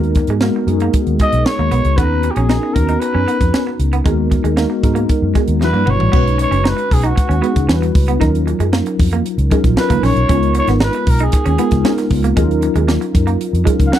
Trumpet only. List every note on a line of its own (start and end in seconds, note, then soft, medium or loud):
1.21 1.47 D#5 medium
1.45 1.98 C#5 medium
1.97 2.32 B4 loud
2.31 2.36 G4 medium
2.31 2.75 G#4 medium
2.74 3.01 A#4 medium
2.99 3.78 B4 loud
5.63 5.91 B4 medium
5.90 6.41 C#5 medium
6.42 6.70 C#5 medium
6.68 6.95 B4 medium
6.93 7.07 G#4 medium
7.05 7.83 F#4 medium
9.78 10.06 B4 medium
10.05 10.56 C#5 loud
10.58 10.69 C#5 medium
10.83 11.11 B4 medium
11.10 11.25 A#4 medium
11.23 12.00 G#4 medium
13.86 13.95 F5 medium
13.93 13.99 F#5 loud